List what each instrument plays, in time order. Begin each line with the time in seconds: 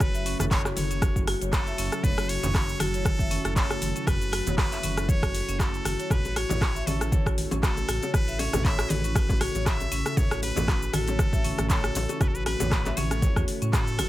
Already playing: ambient pad C#3 F#3 A3 E4 F#4
0.00 analog synth bass F#1, muted trumpet B4, kick, cross-stick, closed hi-hat, mid tom, shaker
0.14 marimba E5, closed hi-hat, shaker
0.26 marimba C#4, open hi-hat, shaker
0.39 analog synth bass F#1, marimba A4, muted trumpet B4, cross-stick, closed hi-hat, high conga, low conga, shaker
0.51 muted trumpet C#5, marimba C#5, kick, clap, closed hi-hat, shaker
0.65 marimba F#4, cross-stick, clap, shaker
0.77 analog synth bass F#1, muted trumpet C#5, open hi-hat, mid tom, high conga, shaker
0.91 marimba C#4, closed hi-hat, shaker
1.02 marimba F#4, kick, cross-stick, closed hi-hat, high conga, shaker
1.16 analog synth bass F#1, kick, shaker
1.27 marimba F#4, cross-stick, open hi-hat, shaker
1.41 analog synth bass F#1, marimba C#5, closed hi-hat, shaker
1.53 muted trumpet A4, kick, cross-stick, clap, closed hi-hat, shaker
1.67 marimba E5, closed hi-hat, shaker
1.78 analog synth bass F#1, marimba C#4, open hi-hat, shaker
1.92 marimba A4, cross-stick, closed hi-hat, shaker
2.04 analog synth bass F#1, muted trumpet B4, marimba C#5, kick, closed hi-hat, mid tom, low conga, shaker
2.18 marimba F#4, cross-stick, closed hi-hat, shaker
2.29 muted trumpet C#5, open hi-hat, shaker
2.43 analog synth bass F#1, marimba C#4, closed hi-hat, high conga, low conga, shaker
2.54 marimba F#4, kick, cross-stick, clap, closed hi-hat, shaker
2.69 shaker
2.80 analog synth bass F#1, marimba F#4, muted trumpet A4, cross-stick, open hi-hat, mid tom, high conga, shaker
2.94 marimba C#5, closed hi-hat, shaker
3.05 kick, cross-stick, closed hi-hat, mid tom, high conga, shaker
3.19 analog synth bass F#1, marimba E5, kick, shaker
3.31 marimba C#4, open hi-hat, high conga, shaker
3.45 analog synth bass F#1, marimba A4, cross-stick, closed hi-hat, shaker
3.56 muted trumpet A4, marimba C#5, kick, clap, closed hi-hat, shaker
3.70 marimba F#4, cross-stick, closed hi-hat, shaker
3.82 analog synth bass F#1, open hi-hat, high conga, shaker
3.96 marimba C#4, closed hi-hat, shaker
4.07 analog synth bass F#1, marimba F#4, muted trumpet B4, kick, cross-stick, closed hi-hat, mid tom, low conga, shaker
4.21 closed hi-hat, shaker
4.32 marimba F#4, cross-stick, open hi-hat, shaker
4.46 analog synth bass F#1, marimba C#5, closed hi-hat, high conga, low conga, shaker
4.58 muted trumpet B4, kick, cross-stick, clap, closed hi-hat, shaker
4.72 marimba E5, clap, closed hi-hat, shaker
4.83 analog synth bass F#1, marimba C#4, open hi-hat, mid tom, high conga, shaker
4.97 marimba A4, cross-stick, closed hi-hat, shaker
5.09 marimba C#5, muted trumpet C#5, kick, closed hi-hat, high conga, shaker
5.23 analog synth bass F#1, marimba F#4, kick, cross-stick, closed hi-hat, shaker
5.35 open hi-hat, shaker
5.48 analog synth bass F#1, marimba C#4, closed hi-hat, shaker
5.59 muted trumpet A4, kick, cross-stick, clap, closed hi-hat, shaker
5.74 closed hi-hat, shaker
5.85 analog synth bass F#1, marimba F#4, cross-stick, open hi-hat, high conga, shaker
5.99 marimba C#5, closed hi-hat, shaker
6.10 analog synth bass A1, ambient pad C#3 E3 A3 A4, marimba F#4, muted trumpet B4, kick, cross-stick, closed hi-hat, mid tom, low conga, shaker
6.25 closed hi-hat, low bongo, shaker
6.36 marimba F#4, muted trumpet C#5, cross-stick, open hi-hat, shaker
6.49 analog synth bass A1, marimba C#5, closed hi-hat, high bongo, high conga, low conga, shaker
6.61 kick, cross-stick, clap, closed hi-hat, low bongo, shaker
6.75 marimba E5, shaker
6.86 analog synth bass A1, marimba C#4, muted trumpet A4, open hi-hat, mid tom, high bongo, low bongo, high conga, shaker
7.01 marimba A4, cross-stick, closed hi-hat, shaker
7.12 marimba C#5, kick, closed hi-hat, mid tom, low bongo, high conga, shaker
7.26 analog synth bass A1, marimba F#4, kick, cross-stick, shaker
7.38 open hi-hat, high conga, shaker
7.51 analog synth bass A1, marimba C#4, closed hi-hat, low bongo, high conga, shaker
7.63 marimba F#4, muted trumpet A4, kick, cross-stick, clap, closed hi-hat, shaker
7.77 closed hi-hat, low bongo, shaker
7.88 analog synth bass A1, marimba F#4, cross-stick, open hi-hat, shaker
8.03 marimba C#5, closed hi-hat, high bongo, low bongo, shaker
8.14 analog synth bass A1, muted trumpet B4, kick, cross-stick, closed hi-hat, mid tom, shaker
8.28 marimba E5, closed hi-hat, shaker
8.39 marimba C#4, muted trumpet C#5, open hi-hat, low bongo, shaker
8.53 analog synth bass A1, marimba A4, cross-stick, closed hi-hat, high bongo, high conga, low conga, shaker
8.65 marimba C#5, muted trumpet E5, kick, clap, closed hi-hat, low bongo, shaker
8.79 marimba F#4, cross-stick, clap, shaker
8.90 analog synth bass A1, muted trumpet B4, open hi-hat, mid tom, high bongo, low bongo, high conga, shaker
9.04 marimba C#4, closed hi-hat, shaker
9.15 marimba F#4, kick, cross-stick, closed hi-hat, high conga, shaker
9.29 analog synth bass A1, kick, low bongo, shaker
9.41 marimba F#4, muted trumpet C#5, cross-stick, open hi-hat, shaker
9.55 analog synth bass A1, marimba C#5, closed hi-hat, low bongo, shaker
9.66 muted trumpet E5, kick, cross-stick, clap, closed hi-hat, shaker
9.80 marimba E5, closed hi-hat, low bongo, shaker
9.92 analog synth bass A1, marimba C#4, open hi-hat, shaker
10.06 marimba A4, cross-stick, closed hi-hat, shaker
10.17 analog synth bass A1, muted trumpet C#5, marimba C#5, kick, closed hi-hat, mid tom, low bongo, low conga, shaker
10.31 marimba F#4, cross-stick, closed hi-hat, shaker
10.42 muted trumpet B4, open hi-hat, low bongo, shaker
10.56 analog synth bass A1, marimba C#4, closed hi-hat, high bongo, high conga, low conga, shaker
10.68 marimba F#4, kick, cross-stick, clap, closed hi-hat, low bongo, shaker
10.82 shaker
10.93 analog synth bass A1, marimba F#4, muted trumpet A4, cross-stick, open hi-hat, mid tom, high bongo, high conga, shaker
11.08 marimba C#5, closed hi-hat, low bongo, shaker
11.19 kick, cross-stick, closed hi-hat, mid tom, high conga, shaker
11.33 analog synth bass A1, marimba E5, kick, low bongo, shaker
11.44 marimba C#4, open hi-hat, high conga, shaker
11.58 analog synth bass A1, marimba A4, cross-stick, closed hi-hat, low bongo, high conga, shaker
11.70 muted trumpet A4, marimba C#5, kick, clap, closed hi-hat, shaker
11.84 marimba F#4, cross-stick, closed hi-hat, shaker
11.95 analog synth bass A1, open hi-hat, low bongo, shaker
12.09 marimba C#4, closed hi-hat, high bongo, shaker
12.20 analog synth bass A1, marimba F#4, muted trumpet B4, kick, cross-stick, closed hi-hat, mid tom, low bongo, low conga, shaker
12.28 muted trumpet A4
12.35 muted trumpet B4, closed hi-hat, shaker
12.46 marimba F#4, muted trumpet B4, cross-stick, open hi-hat, low bongo, shaker
12.60 analog synth bass A1, marimba C#5, closed hi-hat, high bongo, high conga, low conga, shaker
12.71 kick, cross-stick, clap, closed hi-hat, shaker
12.85 marimba E5, clap, closed hi-hat, low bongo, shaker
12.97 analog synth bass A1, marimba C#4, muted trumpet C#5, open hi-hat, mid tom, high bongo, high conga, shaker
13.11 marimba A4, cross-stick, closed hi-hat, low bongo, shaker
13.22 marimba C#5, kick, closed hi-hat, high conga, shaker
13.36 analog synth bass E2, marimba F#4, kick, cross-stick, low bongo, shaker
13.48 open hi-hat, shaker
13.62 analog synth bass A2, marimba C#4, closed hi-hat, shaker
13.73 marimba F#4, muted trumpet A4, kick, cross-stick, clap, closed hi-hat, low bongo, shaker
13.87 closed hi-hat, shaker
13.99 analog synth bass F#1, marimba F#4, cross-stick, open hi-hat, low bongo, high conga, shaker